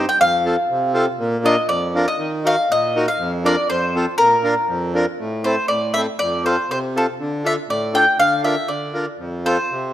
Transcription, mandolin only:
0.09 0.20 G5 medium
0.21 0.92 F5 loud
1.46 1.68 D#5 medium
1.69 2.07 D5 medium
2.08 2.31 D#5 medium
2.47 2.71 F5 medium
2.72 3.05 D#5 loud
3.08 3.31 F5 medium
3.46 3.69 D5 medium
3.70 4.15 C5 medium
4.18 4.89 A#4 loud
5.44 5.68 C5 medium
5.68 5.92 D5 medium
5.94 6.01 E5 medium
6.19 6.45 D5 loud
6.46 6.70 C5 medium
6.71 6.78 C5 medium
6.98 7.04 A4 medium
7.46 7.53 E5 medium
7.70 7.96 D5 medium
7.95 8.19 G5 loud
8.20 8.44 F5 loud
8.44 8.70 E5 medium
8.68 9.05 D5 medium
9.46 9.93 C5 medium

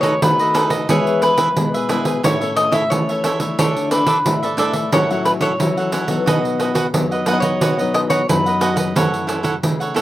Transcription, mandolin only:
0.01 0.23 C#5 medium
0.23 0.70 B4 medium
0.90 1.22 C#5 medium
1.23 2.20 B4 medium
2.25 2.56 C#5 medium
2.56 2.74 D#5 medium
2.72 2.89 E5 medium
2.90 3.38 C#5 medium
3.59 3.91 C#5 medium
3.92 4.93 B4 medium
4.94 5.25 C#5 medium
5.25 5.30 B4 medium
5.42 5.90 C#5 medium
7.33 7.40 D#5 medium
7.40 7.94 C#5 medium
7.95 8.00 D#5 loud
8.10 8.28 C#5 medium
8.29 8.76 B4 medium

